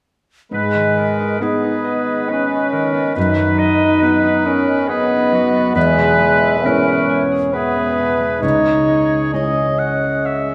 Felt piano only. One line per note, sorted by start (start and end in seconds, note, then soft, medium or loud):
0.51 1.38 G#2 soft
1.41 3.12 B3 soft
1.41 3.12 D#4 soft
1.41 3.13 G#4 soft
3.17 4.00 F#2 soft
4.02 5.72 B3 soft
4.02 5.72 D#4 soft
4.02 5.72 D#5 soft
5.75 6.62 E2 soft
6.65 8.39 G#3 soft
6.65 8.39 B3 soft
6.65 8.39 E4 soft
8.42 9.31 C#2 soft
9.34 10.55 G#3 soft
9.34 10.55 E4 soft
9.34 10.55 C#5 soft